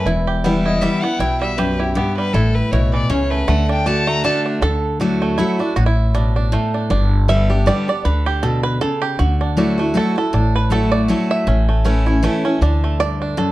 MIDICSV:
0, 0, Header, 1, 5, 480
1, 0, Start_track
1, 0, Key_signature, 2, "major"
1, 0, Tempo, 380469
1, 78, Time_signature, 3, 2, 24, 8
1, 17056, End_track
2, 0, Start_track
2, 0, Title_t, "Fiddle"
2, 0, Program_c, 0, 110
2, 823, Note_on_c, 0, 75, 84
2, 1029, Note_on_c, 0, 76, 83
2, 1048, Note_off_c, 0, 75, 0
2, 1289, Note_on_c, 0, 78, 94
2, 1308, Note_off_c, 0, 76, 0
2, 1504, Note_on_c, 0, 79, 86
2, 1523, Note_off_c, 0, 78, 0
2, 1768, Note_off_c, 0, 79, 0
2, 1775, Note_on_c, 0, 76, 86
2, 1993, Note_on_c, 0, 71, 74
2, 2012, Note_off_c, 0, 76, 0
2, 2258, Note_on_c, 0, 67, 79
2, 2277, Note_off_c, 0, 71, 0
2, 2458, Note_off_c, 0, 67, 0
2, 2466, Note_on_c, 0, 67, 70
2, 2719, Note_off_c, 0, 67, 0
2, 2733, Note_on_c, 0, 71, 95
2, 2944, Note_on_c, 0, 69, 80
2, 2963, Note_off_c, 0, 71, 0
2, 3212, Note_on_c, 0, 71, 85
2, 3231, Note_off_c, 0, 69, 0
2, 3424, Note_on_c, 0, 73, 81
2, 3443, Note_off_c, 0, 71, 0
2, 3692, Note_off_c, 0, 73, 0
2, 3699, Note_on_c, 0, 74, 91
2, 3906, Note_on_c, 0, 73, 80
2, 3925, Note_off_c, 0, 74, 0
2, 4170, Note_on_c, 0, 71, 87
2, 4189, Note_off_c, 0, 73, 0
2, 4389, Note_on_c, 0, 78, 77
2, 4408, Note_off_c, 0, 71, 0
2, 4660, Note_off_c, 0, 78, 0
2, 4668, Note_on_c, 0, 79, 93
2, 4876, Note_on_c, 0, 81, 91
2, 4895, Note_off_c, 0, 79, 0
2, 5136, Note_on_c, 0, 82, 105
2, 5155, Note_off_c, 0, 81, 0
2, 5345, Note_off_c, 0, 82, 0
2, 5353, Note_on_c, 0, 81, 103
2, 5514, Note_off_c, 0, 81, 0
2, 17056, End_track
3, 0, Start_track
3, 0, Title_t, "Five-string banjo"
3, 0, Program_c, 1, 105
3, 0, Note_on_c, 1, 52, 49
3, 80, Note_on_c, 1, 64, 60
3, 345, Note_on_c, 1, 67, 62
3, 558, Note_on_c, 1, 59, 53
3, 823, Note_off_c, 1, 64, 0
3, 828, Note_on_c, 1, 64, 56
3, 994, Note_off_c, 1, 67, 0
3, 1040, Note_on_c, 1, 55, 62
3, 1161, Note_off_c, 1, 52, 0
3, 1251, Note_off_c, 1, 59, 0
3, 1307, Note_on_c, 1, 59, 59
3, 1514, Note_off_c, 1, 64, 0
3, 1519, Note_on_c, 1, 64, 67
3, 1732, Note_off_c, 1, 55, 0
3, 1786, Note_on_c, 1, 55, 65
3, 1955, Note_off_c, 1, 59, 0
3, 2001, Note_on_c, 1, 67, 60
3, 2211, Note_off_c, 1, 64, 0
3, 2265, Note_on_c, 1, 64, 53
3, 2434, Note_off_c, 1, 55, 0
3, 2483, Note_on_c, 1, 59, 65
3, 2692, Note_off_c, 1, 67, 0
3, 2752, Note_on_c, 1, 55, 61
3, 2913, Note_off_c, 1, 64, 0
3, 2959, Note_off_c, 1, 55, 0
3, 2959, Note_off_c, 1, 59, 0
3, 2963, Note_on_c, 1, 64, 65
3, 3429, Note_off_c, 1, 64, 0
3, 3444, Note_on_c, 1, 64, 55
3, 3702, Note_on_c, 1, 52, 56
3, 3910, Note_on_c, 1, 61, 60
3, 4133, Note_off_c, 1, 64, 0
3, 4178, Note_on_c, 1, 57, 53
3, 4352, Note_off_c, 1, 52, 0
3, 4384, Note_off_c, 1, 57, 0
3, 4389, Note_on_c, 1, 57, 81
3, 4392, Note_off_c, 1, 61, 0
3, 4658, Note_on_c, 1, 62, 62
3, 4853, Note_off_c, 1, 62, 0
3, 4869, Note_on_c, 1, 62, 58
3, 5086, Note_off_c, 1, 57, 0
3, 5138, Note_on_c, 1, 57, 67
3, 5341, Note_off_c, 1, 62, 0
3, 5356, Note_on_c, 1, 62, 68
3, 5607, Note_off_c, 1, 62, 0
3, 5623, Note_on_c, 1, 62, 58
3, 5790, Note_off_c, 1, 57, 0
3, 5828, Note_off_c, 1, 62, 0
3, 5833, Note_on_c, 1, 69, 106
3, 6312, Note_off_c, 1, 69, 0
3, 6317, Note_on_c, 1, 62, 55
3, 6582, Note_on_c, 1, 57, 63
3, 6784, Note_on_c, 1, 64, 91
3, 7060, Note_off_c, 1, 62, 0
3, 7065, Note_on_c, 1, 62, 60
3, 7234, Note_off_c, 1, 57, 0
3, 7237, Note_off_c, 1, 64, 0
3, 7263, Note_off_c, 1, 62, 0
3, 7268, Note_on_c, 1, 66, 88
3, 7391, Note_off_c, 1, 66, 0
3, 7397, Note_on_c, 1, 64, 74
3, 7754, Note_on_c, 1, 62, 57
3, 8020, Note_off_c, 1, 64, 0
3, 8025, Note_off_c, 1, 62, 0
3, 8025, Note_on_c, 1, 62, 53
3, 8239, Note_on_c, 1, 57, 61
3, 8507, Note_off_c, 1, 62, 0
3, 8507, Note_on_c, 1, 62, 55
3, 8713, Note_off_c, 1, 62, 0
3, 8713, Note_on_c, 1, 62, 63
3, 8719, Note_off_c, 1, 57, 0
3, 9197, Note_on_c, 1, 76, 94
3, 9459, Note_off_c, 1, 62, 0
3, 9464, Note_on_c, 1, 62, 55
3, 9672, Note_off_c, 1, 76, 0
3, 9677, Note_on_c, 1, 74, 102
3, 9939, Note_off_c, 1, 74, 0
3, 9955, Note_on_c, 1, 74, 105
3, 10150, Note_off_c, 1, 74, 0
3, 10155, Note_on_c, 1, 71, 86
3, 10425, Note_on_c, 1, 67, 80
3, 10435, Note_off_c, 1, 71, 0
3, 10633, Note_on_c, 1, 69, 80
3, 10646, Note_off_c, 1, 67, 0
3, 10887, Note_off_c, 1, 69, 0
3, 10893, Note_on_c, 1, 71, 88
3, 11113, Note_off_c, 1, 71, 0
3, 11118, Note_on_c, 1, 69, 89
3, 11230, Note_off_c, 1, 62, 0
3, 11375, Note_on_c, 1, 67, 84
3, 11396, Note_off_c, 1, 69, 0
3, 11593, Note_on_c, 1, 66, 72
3, 11601, Note_off_c, 1, 67, 0
3, 11870, Note_on_c, 1, 62, 59
3, 12043, Note_off_c, 1, 66, 0
3, 12073, Note_off_c, 1, 62, 0
3, 12088, Note_on_c, 1, 62, 56
3, 12354, Note_on_c, 1, 57, 61
3, 12580, Note_on_c, 1, 69, 82
3, 12780, Note_off_c, 1, 62, 0
3, 12827, Note_off_c, 1, 69, 0
3, 12842, Note_on_c, 1, 69, 91
3, 13044, Note_on_c, 1, 62, 66
3, 13312, Note_off_c, 1, 69, 0
3, 13317, Note_on_c, 1, 71, 81
3, 13355, Note_off_c, 1, 57, 0
3, 13520, Note_off_c, 1, 71, 0
3, 13525, Note_on_c, 1, 69, 84
3, 13737, Note_off_c, 1, 62, 0
3, 13772, Note_on_c, 1, 74, 106
3, 13799, Note_off_c, 1, 69, 0
3, 14004, Note_on_c, 1, 57, 64
3, 14262, Note_off_c, 1, 74, 0
3, 14267, Note_on_c, 1, 76, 107
3, 14478, Note_on_c, 1, 61, 64
3, 14714, Note_off_c, 1, 76, 0
3, 14738, Note_off_c, 1, 57, 0
3, 14743, Note_on_c, 1, 57, 64
3, 14940, Note_off_c, 1, 61, 0
3, 14955, Note_on_c, 1, 61, 58
3, 15224, Note_on_c, 1, 64, 58
3, 15395, Note_off_c, 1, 57, 0
3, 15439, Note_on_c, 1, 57, 66
3, 15651, Note_off_c, 1, 61, 0
3, 15703, Note_on_c, 1, 61, 61
3, 15875, Note_off_c, 1, 64, 0
3, 15917, Note_off_c, 1, 61, 0
3, 15919, Note_off_c, 1, 57, 0
3, 15925, Note_on_c, 1, 62, 68
3, 16196, Note_on_c, 1, 57, 62
3, 16400, Note_on_c, 1, 74, 105
3, 16616, Note_off_c, 1, 62, 0
3, 16668, Note_off_c, 1, 74, 0
3, 16673, Note_on_c, 1, 62, 55
3, 16840, Note_off_c, 1, 57, 0
3, 16880, Note_on_c, 1, 69, 82
3, 17056, Note_off_c, 1, 62, 0
3, 17056, Note_off_c, 1, 69, 0
3, 17056, End_track
4, 0, Start_track
4, 0, Title_t, "Steel-string acoustic guitar"
4, 0, Program_c, 2, 25
4, 83, Note_on_c, 2, 40, 82
4, 558, Note_on_c, 2, 52, 89
4, 563, Note_on_c, 2, 55, 92
4, 573, Note_on_c, 2, 59, 93
4, 578, Note_on_c, 2, 64, 98
4, 997, Note_off_c, 2, 40, 0
4, 1010, Note_off_c, 2, 52, 0
4, 1018, Note_off_c, 2, 55, 0
4, 1023, Note_off_c, 2, 59, 0
4, 1025, Note_on_c, 2, 52, 84
4, 1026, Note_off_c, 2, 64, 0
4, 1032, Note_on_c, 2, 55, 92
4, 1039, Note_on_c, 2, 59, 93
4, 1045, Note_on_c, 2, 64, 107
4, 1284, Note_off_c, 2, 64, 0
4, 1288, Note_off_c, 2, 52, 0
4, 1292, Note_off_c, 2, 55, 0
4, 1295, Note_off_c, 2, 59, 0
4, 1299, Note_on_c, 2, 64, 54
4, 1319, Note_on_c, 2, 59, 46
4, 1505, Note_off_c, 2, 64, 0
4, 1515, Note_off_c, 2, 59, 0
4, 1516, Note_on_c, 2, 47, 87
4, 1992, Note_on_c, 2, 42, 93
4, 2433, Note_off_c, 2, 47, 0
4, 2452, Note_off_c, 2, 42, 0
4, 2464, Note_on_c, 2, 43, 95
4, 2928, Note_off_c, 2, 43, 0
4, 2955, Note_on_c, 2, 45, 92
4, 3440, Note_on_c, 2, 47, 90
4, 3872, Note_off_c, 2, 45, 0
4, 3896, Note_off_c, 2, 47, 0
4, 3906, Note_on_c, 2, 49, 94
4, 4369, Note_off_c, 2, 49, 0
4, 4389, Note_on_c, 2, 50, 85
4, 4854, Note_off_c, 2, 50, 0
4, 4870, Note_on_c, 2, 50, 86
4, 4875, Note_on_c, 2, 57, 93
4, 4885, Note_on_c, 2, 62, 87
4, 4888, Note_on_c, 2, 66, 90
4, 5331, Note_off_c, 2, 50, 0
4, 5333, Note_off_c, 2, 57, 0
4, 5338, Note_off_c, 2, 62, 0
4, 5340, Note_off_c, 2, 66, 0
4, 5346, Note_on_c, 2, 50, 88
4, 5356, Note_on_c, 2, 57, 94
4, 5360, Note_on_c, 2, 62, 102
4, 5368, Note_on_c, 2, 66, 88
4, 5810, Note_off_c, 2, 50, 0
4, 5814, Note_off_c, 2, 57, 0
4, 5816, Note_off_c, 2, 62, 0
4, 5821, Note_off_c, 2, 66, 0
4, 5832, Note_on_c, 2, 50, 88
4, 6304, Note_on_c, 2, 54, 81
4, 6316, Note_on_c, 2, 57, 96
4, 6324, Note_on_c, 2, 64, 90
4, 6328, Note_on_c, 2, 66, 94
4, 6752, Note_off_c, 2, 50, 0
4, 6769, Note_off_c, 2, 54, 0
4, 6775, Note_off_c, 2, 57, 0
4, 6779, Note_off_c, 2, 64, 0
4, 6781, Note_off_c, 2, 66, 0
4, 6791, Note_on_c, 2, 54, 81
4, 6793, Note_on_c, 2, 57, 96
4, 6803, Note_on_c, 2, 64, 95
4, 6807, Note_on_c, 2, 66, 99
4, 7039, Note_off_c, 2, 66, 0
4, 7051, Note_off_c, 2, 54, 0
4, 7052, Note_off_c, 2, 57, 0
4, 7054, Note_on_c, 2, 66, 58
4, 7057, Note_off_c, 2, 64, 0
4, 7080, Note_on_c, 2, 64, 50
4, 7263, Note_off_c, 2, 66, 0
4, 7272, Note_on_c, 2, 45, 91
4, 7276, Note_off_c, 2, 64, 0
4, 7753, Note_on_c, 2, 47, 83
4, 8193, Note_off_c, 2, 45, 0
4, 8215, Note_off_c, 2, 47, 0
4, 8226, Note_on_c, 2, 45, 95
4, 8692, Note_off_c, 2, 45, 0
4, 8707, Note_on_c, 2, 43, 92
4, 9188, Note_on_c, 2, 50, 94
4, 9198, Note_on_c, 2, 55, 96
4, 9202, Note_on_c, 2, 59, 95
4, 9210, Note_on_c, 2, 67, 88
4, 9442, Note_off_c, 2, 67, 0
4, 9452, Note_off_c, 2, 50, 0
4, 9457, Note_off_c, 2, 55, 0
4, 9457, Note_on_c, 2, 67, 66
4, 9459, Note_off_c, 2, 59, 0
4, 9477, Note_on_c, 2, 59, 51
4, 9632, Note_off_c, 2, 43, 0
4, 9664, Note_off_c, 2, 59, 0
4, 9664, Note_on_c, 2, 50, 89
4, 9666, Note_off_c, 2, 67, 0
4, 9675, Note_on_c, 2, 55, 90
4, 9680, Note_on_c, 2, 59, 103
4, 9687, Note_on_c, 2, 67, 96
4, 9924, Note_off_c, 2, 67, 0
4, 9930, Note_off_c, 2, 50, 0
4, 9935, Note_off_c, 2, 55, 0
4, 9938, Note_off_c, 2, 59, 0
4, 9939, Note_on_c, 2, 67, 56
4, 9961, Note_on_c, 2, 59, 47
4, 10147, Note_off_c, 2, 67, 0
4, 10157, Note_on_c, 2, 50, 90
4, 10159, Note_off_c, 2, 59, 0
4, 10634, Note_on_c, 2, 47, 88
4, 11077, Note_off_c, 2, 50, 0
4, 11097, Note_off_c, 2, 47, 0
4, 11116, Note_on_c, 2, 49, 85
4, 11578, Note_off_c, 2, 49, 0
4, 11594, Note_on_c, 2, 50, 82
4, 12069, Note_on_c, 2, 54, 82
4, 12076, Note_on_c, 2, 57, 86
4, 12083, Note_on_c, 2, 64, 90
4, 12087, Note_on_c, 2, 66, 86
4, 12320, Note_off_c, 2, 66, 0
4, 12333, Note_off_c, 2, 54, 0
4, 12335, Note_on_c, 2, 66, 62
4, 12337, Note_off_c, 2, 57, 0
4, 12340, Note_off_c, 2, 64, 0
4, 12356, Note_on_c, 2, 64, 50
4, 12516, Note_off_c, 2, 50, 0
4, 12538, Note_off_c, 2, 64, 0
4, 12538, Note_on_c, 2, 54, 83
4, 12542, Note_off_c, 2, 66, 0
4, 12547, Note_on_c, 2, 57, 83
4, 12554, Note_on_c, 2, 64, 96
4, 12558, Note_on_c, 2, 66, 110
4, 12798, Note_off_c, 2, 66, 0
4, 12807, Note_off_c, 2, 54, 0
4, 12812, Note_off_c, 2, 57, 0
4, 12813, Note_on_c, 2, 66, 57
4, 12815, Note_off_c, 2, 64, 0
4, 12838, Note_on_c, 2, 64, 50
4, 13025, Note_off_c, 2, 66, 0
4, 13031, Note_on_c, 2, 45, 92
4, 13038, Note_off_c, 2, 64, 0
4, 13500, Note_on_c, 2, 54, 83
4, 13507, Note_on_c, 2, 57, 88
4, 13517, Note_on_c, 2, 64, 95
4, 13519, Note_on_c, 2, 66, 99
4, 13954, Note_off_c, 2, 45, 0
4, 13969, Note_off_c, 2, 54, 0
4, 13973, Note_off_c, 2, 57, 0
4, 13978, Note_off_c, 2, 64, 0
4, 13979, Note_off_c, 2, 66, 0
4, 13982, Note_on_c, 2, 54, 88
4, 13992, Note_on_c, 2, 57, 94
4, 13997, Note_on_c, 2, 64, 98
4, 14005, Note_on_c, 2, 66, 95
4, 14450, Note_off_c, 2, 54, 0
4, 14455, Note_off_c, 2, 57, 0
4, 14458, Note_off_c, 2, 64, 0
4, 14461, Note_off_c, 2, 66, 0
4, 14469, Note_on_c, 2, 45, 90
4, 14943, Note_on_c, 2, 52, 83
4, 14952, Note_on_c, 2, 57, 91
4, 14959, Note_on_c, 2, 61, 99
4, 14966, Note_on_c, 2, 64, 104
4, 15201, Note_off_c, 2, 64, 0
4, 15209, Note_off_c, 2, 52, 0
4, 15213, Note_off_c, 2, 57, 0
4, 15216, Note_on_c, 2, 64, 57
4, 15217, Note_off_c, 2, 61, 0
4, 15234, Note_on_c, 2, 61, 51
4, 15391, Note_off_c, 2, 45, 0
4, 15424, Note_on_c, 2, 52, 94
4, 15425, Note_off_c, 2, 64, 0
4, 15427, Note_off_c, 2, 61, 0
4, 15432, Note_on_c, 2, 57, 100
4, 15442, Note_on_c, 2, 61, 97
4, 15449, Note_on_c, 2, 64, 95
4, 15689, Note_off_c, 2, 52, 0
4, 15689, Note_off_c, 2, 64, 0
4, 15693, Note_off_c, 2, 57, 0
4, 15698, Note_off_c, 2, 61, 0
4, 15704, Note_on_c, 2, 64, 63
4, 15723, Note_on_c, 2, 61, 45
4, 15909, Note_off_c, 2, 64, 0
4, 15918, Note_off_c, 2, 61, 0
4, 15920, Note_on_c, 2, 50, 85
4, 16402, Note_on_c, 2, 43, 88
4, 16835, Note_off_c, 2, 50, 0
4, 16858, Note_off_c, 2, 43, 0
4, 16870, Note_on_c, 2, 42, 90
4, 17056, Note_off_c, 2, 42, 0
4, 17056, End_track
5, 0, Start_track
5, 0, Title_t, "Upright bass"
5, 0, Program_c, 3, 32
5, 72, Note_on_c, 3, 28, 99
5, 1059, Note_off_c, 3, 28, 0
5, 1508, Note_on_c, 3, 35, 83
5, 2496, Note_off_c, 3, 35, 0
5, 2950, Note_on_c, 3, 33, 90
5, 3280, Note_off_c, 3, 33, 0
5, 3432, Note_on_c, 3, 35, 84
5, 3841, Note_off_c, 3, 35, 0
5, 3906, Note_on_c, 3, 37, 86
5, 4317, Note_off_c, 3, 37, 0
5, 4388, Note_on_c, 3, 38, 94
5, 5378, Note_off_c, 3, 38, 0
5, 5824, Note_on_c, 3, 38, 95
5, 6816, Note_off_c, 3, 38, 0
5, 7270, Note_on_c, 3, 33, 90
5, 8261, Note_off_c, 3, 33, 0
5, 8708, Note_on_c, 3, 31, 97
5, 9700, Note_off_c, 3, 31, 0
5, 10159, Note_on_c, 3, 38, 81
5, 11147, Note_off_c, 3, 38, 0
5, 11603, Note_on_c, 3, 38, 92
5, 12590, Note_off_c, 3, 38, 0
5, 13037, Note_on_c, 3, 33, 86
5, 14025, Note_off_c, 3, 33, 0
5, 14471, Note_on_c, 3, 33, 98
5, 15460, Note_off_c, 3, 33, 0
5, 15911, Note_on_c, 3, 38, 95
5, 16899, Note_off_c, 3, 38, 0
5, 17056, End_track
0, 0, End_of_file